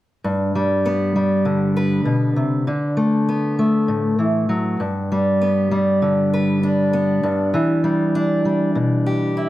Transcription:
0.24 G2
0.55 G3
0.86 B3
1.16 G3
1.45 D3
1.77 B4
2.05 B2
2.36 C3
2.67 D3
2.97 A3
3.29 B3
3.59 A3
3.88 A2
4.19 E3
4.49 F#3
4.80 G2
5.12 G3
5.42 B3
5.71 G3
6.02 D3
6.34 B4
6.63 D4
6.93 B3
7.23 G2
7.54 E3
7.84 G3
8.15 D4
8.45 G3
8.75 B2
9.06 G4
9.37 E4

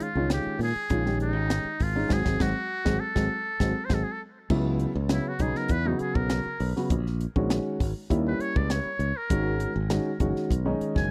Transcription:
0.00 F4, muted fingered electric bass stroke, closed hi-hat
0.15 C#2 D#3 G#3 C#4 F4
0.30 G4, snare, closed hi-hat
0.47 muted fingered electric bass stroke
0.59 A#2, open hi-hat
0.63 G#4
0.76 muted fingered electric bass stroke
0.90 A#1 D#3 G#3 C#4 F4, kick, closed hi-hat
1.06 D#3 G#3 C#4 G4, snare
1.20 D#4, closed hi-hat
1.35 G#1
1.50 snare, closed hi-hat
1.65 muted fingered electric bass stroke
1.80 G#1 F4, kick, open hi-hat
1.96 D#3 G#3 C#4 D#4
2.09 G#1 F#3 G#3 C4 G#4, kick, snare
2.25 G#1 F#3 G#3 C4, kick, snare
2.40 G#1 F#3 G#3 C4 F#4, kick, snare
2.85 G#1 F#3 G#3 C4, kick, snare
3.00 A4
3.15 G#1 F#3 G#3 C4, kick, snare
3.60 G#1 F#3 G#3 C4, kick, snare
3.85 C5
3.90 G#1 F#3 G#3 C4, kick, snare
3.94 A4
4.04 G#4
4.12 A4
4.50 C#2 C#3 F#3 B3 E4, kick, crash
4.79 closed hi-hat
4.95 C#2
5.09 C#3 F#3 B3 C#4 E4, snare, closed hi-hat
5.28 F#4
5.39 B1 C#3 F#3 B3 D#4 G#4, kick, closed hi-hat
5.55 A#4, snare
5.68 E2 B4, kick, closed hi-hat
5.85 C#3 F#3 B3 D#4 F#4
5.99 G#4, muted fingered electric bass stroke, closed hi-hat
6.15 B1 A#4, kick
6.30 snare, closed hi-hat
6.46 muted fingered electric bass stroke
6.60 B1, open hi-hat
6.76 C#3 F#3 B3 F#4, snare
6.90 A#1, kick, closed hi-hat
7.07 snare
7.21 closed hi-hat
7.36 A#1 D#3 G#3 C#4 F#4, kick
7.50 snare, closed hi-hat
7.80 G#1, kick, open hi-hat
8.10 D#2 G3 A#3 C#4 E4, kick, closed hi-hat
8.27 B4
8.39 C#5, muted fingered electric bass stroke, closed hi-hat
8.56 C#2 D5, kick
8.70 C#5, snare, closed hi-hat
8.86 muted fingered electric bass stroke
8.99 C#2, closed hi-hat
9.17 A#4
9.30 G#1 D#3 G#3 C#4 F#4, kick, closed hi-hat
9.60 closed hi-hat
9.76 G#1
9.90 D#3 G#3 C#4 F#4, snare, closed hi-hat
10.20 F#1 D#3 G#3 C#4 F#4, kick, closed hi-hat
10.36 snare
10.50 B1, kick, closed hi-hat
10.65 D#3 G#3 C#4 D#4
10.81 muted fingered electric bass stroke, closed hi-hat
10.96 F#1 G#5, kick, snare

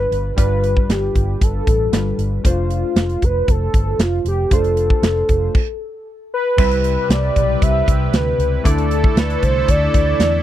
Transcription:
Already playing: G2 G3 D4 F4 B4
0.11 G1, closed hi-hat
0.36 G1 G2 G3 D4 F4 B4, kick, closed hi-hat
0.64 closed hi-hat
0.77 kick
0.89 G1 G4, snare, closed hi-hat
1.15 G1, kick, closed hi-hat
1.41 G1 A4, kick, closed hi-hat
1.67 A1, kick, closed hi-hat
1.92 G1 G3 D4 F4 B4, snare, closed hi-hat
2.18 G1, closed hi-hat
2.44 F1 A3 D4 F4 C5, kick, closed hi-hat
2.70 closed hi-hat
2.95 F1, snare, closed hi-hat
3.09 closed hi-hat
3.22 F1 B4, kick, closed hi-hat
3.48 F1 A4, kick, closed hi-hat
3.74 G1, kick, closed hi-hat
3.99 F1 F4, snare, closed hi-hat
4.25 F1 G4, closed hi-hat
4.51 F1 A3 D4 F4 A4 C5, kick, closed hi-hat
4.64 closed hi-hat
4.77 closed hi-hat
4.90 kick
5.02 F1, snare, closed hi-hat
5.29 F1, kick, closed hi-hat
5.55 kick, crash
6.34 B4
6.57 C2 C3 G3 C4 E4 G4 B4, kick, crash
6.71 closed hi-hat
6.84 closed hi-hat
7.09 C2 D5, snare, closed hi-hat
7.36 B1, kick, closed hi-hat
7.62 C2 E5, kick, closed hi-hat
7.88 C2, kick, closed hi-hat
8.13 D2 B4, snare, closed hi-hat
8.38 C#2, closed hi-hat
8.64 D2 D3 E3 A3 D4 E4 A4 D5, kick, closed hi-hat
8.78 closed hi-hat
8.91 closed hi-hat
9.04 kick
9.16 D2 B4, snare, closed hi-hat
9.30 closed hi-hat
9.42 C2 C5, kick, closed hi-hat
9.68 D2 D5, kick, closed hi-hat
9.94 D2, kick, closed hi-hat
10.19 E2, snare, closed hi-hat

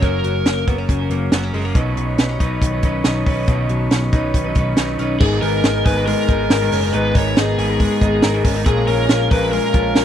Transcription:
Already playing: C#3 F#3 A#3 C#4
0.01 F#1 F#2 F#3 C#4 F#4 A#4, kick, closed hi-hat
0.24 F#1 F#3, closed hi-hat
0.45 F#1 A#3, snare, closed hi-hat
0.66 F#1 F#3 B3 C#4 F#4 A#4, kick, closed hi-hat
0.78 C#4
0.89 F#1 C#3, kick, closed hi-hat
0.99 C#4 F#4 A#4
1.09 F#1 F#3 A#3 C#4 F#4 A#4, closed hi-hat
1.31 F#1 F#3 B3 C#4 F#4 A#4, snare, closed hi-hat
1.44 C#4
1.53 F#1 F#3 G#3 C#4 F#4 A#4, open hi-hat
1.65 A#3
1.75 B1 B2 D#3 F#3 C#4 D#4 B4 C#5, kick, closed hi-hat
1.96 B1 F#3, closed hi-hat
2.18 B1 B3, snare, closed hi-hat
2.29 C#4
2.39 B1 F#3 C#4 D#4 B4, kick, closed hi-hat
2.62 B1 D#3, kick, closed hi-hat
2.72 F#3 C#4 D#4 B4
2.83 B1 F#3 C#4 D#4 B4, kick, closed hi-hat
3.04 B1 F#3 C#4 D#4 B4, snare, closed hi-hat
3.26 B1 F#3 C#4 D#4 B4, kick, open hi-hat
3.48 B1 B2 D#3 F#3 C#4 D#4 B4, kick, closed hi-hat
3.69 B1 F#3, closed hi-hat
3.91 B1 C#4, snare, closed hi-hat
4.12 B1 F#3 C#4 D#4 B4, kick, closed hi-hat
4.34 B1 D#3, kick, closed hi-hat
4.44 F#3 C#4 D#4 B4
4.55 B1 F#3 C#4 D#4 B4, kick, closed hi-hat
4.77 B1 F#3 C#4 D#4 B4, snare, closed hi-hat
4.98 B1 F#3 C#4 D#4 B4, closed hi-hat
5.20 G#1 G#2 D#3 G#3 B3 D#4 G#4 A#4, kick, crash
5.41 G#1 G#3 B3 D#4 A#4, hi-hat pedal, open hi-hat
5.64 G#1 D#4, snare, hi-hat pedal, open hi-hat
5.85 G#1 G#2 D#3 G#3 B3 D#4 G#4 A#4 B4, kick, hi-hat pedal, open hi-hat
5.97 A#4
6.07 G#3 A#4, hi-hat pedal, open hi-hat
6.28 G#1 G#3 B3 D#4 A#4, kick, hi-hat pedal, open hi-hat
6.50 G#1 A#4, snare, hi-hat pedal, open hi-hat
6.61 G#2 D#3 G#3 B3 D#4 A#4
6.72 F#1 C#4, hi-hat pedal, open hi-hat
6.83 D#4
6.92 G#1 G#2 D#3 G#3 B3 D#4 A#4 B4, hi-hat pedal, open hi-hat
7.14 G#1 G#3 B3 D#4 A#4 C#5, kick, hi-hat pedal, open hi-hat
7.37 G#1 D#4 G#4, snare, hi-hat pedal, open hi-hat
7.58 G#1 G#2 D#3 G#3 B3 D#4 G#4 A#4, hi-hat pedal, open hi-hat
7.69 A#4
7.80 G#3, kick, hi-hat pedal, open hi-hat
8.01 G#1 G#3 B3 D#4 A#4, kick, hi-hat pedal, open hi-hat
8.22 G#1 A#4, snare, hi-hat pedal, open hi-hat
8.34 G#2 D#3 G#3 B3 D#4 A#4
8.44 G#1 C#4, kick, hi-hat pedal, open hi-hat
8.56 D#4
8.65 A#1 A#2 F3 G#3 C#4 F4 G#4 A#4, kick, hi-hat pedal, open hi-hat
8.87 A#1 G#3 C#4 F4 A#4, hi-hat pedal, open hi-hat
9.09 A#1 F4, snare, hi-hat pedal, open hi-hat
9.31 A#1 A#2 F3 G#3 C#4 F4 A#4 B4, kick, hi-hat pedal, open hi-hat
9.51 G#3 A#4, hi-hat pedal, open hi-hat
9.73 A#1 G#3 C#4 F4 A#4, kick, hi-hat pedal, open hi-hat
9.95 A#1 A#4, snare, hi-hat pedal, open hi-hat

